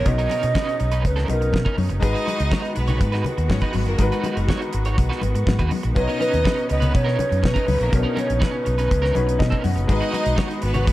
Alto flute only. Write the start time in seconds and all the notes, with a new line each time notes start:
0.08 D#5
1.07 B4
1.31 A#4
5.97 B4
6.21 B4
6.71 D#5
6.96 C#5
7.44 B4
7.93 A#4
8.19 C#5
8.35 C#5
8.43 B4